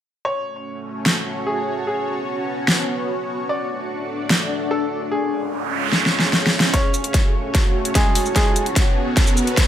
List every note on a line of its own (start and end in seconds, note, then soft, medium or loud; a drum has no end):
0.25 1.85 A3 medium
0.25 1.85 C#4 medium
0.25 5.07 F#4 medium
0.25 4.08 F#4 medium
0.25 3.46 C#5 medium
0.25 0.78 C#5 medium
0.47 3.49 C#5 medium
0.58 2.52 A5 medium
1.06 snare loud
1.47 1.74 G#4 medium
1.87 3.48 B3 medium
1.87 4.14 B3 medium
1.87 3.48 C#4 medium
1.87 2.15 G#4 medium
2.60 4.03 C#6 medium
2.68 snare loud
3.49 5.10 A3 medium
3.49 5.10 D4 medium
3.49 5.11 D4 medium
3.49 5.10 D5 medium
3.49 4.02 D5 medium
3.73 5.11 F#5 medium
3.81 5.11 D5 medium
3.95 5.11 A4 medium
4.30 snare loud
4.71 4.98 A4 medium
5.11 6.72 G#3 medium
5.11 7.38 C#4 medium
5.11 6.72 C#4 medium
5.11 6.72 F4 medium
5.11 5.39 G#4 medium
5.11 6.72 C#5 medium
5.11 noise sweep medium
5.28 6.74 G#4 medium
5.84 9.67 C#5 medium
5.84 7.38 F5 medium
5.93 snare medium
6.06 snare medium
6.20 snare medium
6.33 snare medium
6.47 snare medium
6.60 snare loud
6.74 8.34 A3 medium
6.74 7.26 C#4 medium
6.74 9.67 C#4 medium
6.74 9.67 F#4 medium
6.74 9.67 C#5 medium
6.74 7.26 C#5 medium
6.74 kick medium
6.74 snare soft
6.74 closed hi-hat medium
6.74 riser medium
6.94 closed hi-hat medium
6.94 shaker medium
7.04 closed hi-hat medium
7.14 kick loud
7.14 snare soft
7.14 closed hi-hat medium
7.19 8.97 A5 medium
7.55 kick loud
7.55 snare medium
7.55 closed hi-hat medium
7.85 closed hi-hat medium
7.95 8.23 G#3 medium
7.95 8.23 G#4 medium
7.95 kick medium
7.95 snare medium
7.95 closed hi-hat medium
8.15 open hi-hat medium
8.26 shaker soft
8.36 8.63 G#3 medium
8.36 9.67 B3 medium
8.36 8.63 G#4 medium
8.36 kick medium
8.36 snare medium
8.36 closed hi-hat medium
8.56 closed hi-hat medium
8.56 shaker medium
8.66 closed hi-hat medium
8.76 kick loud
8.76 snare medium
8.76 closed hi-hat medium
9.09 9.67 C#6 medium
9.17 kick loud
9.17 snare medium
9.17 closed hi-hat medium
9.27 shaker soft
9.37 shaker medium
9.47 closed hi-hat medium
9.57 kick medium
9.57 snare medium
9.57 closed hi-hat medium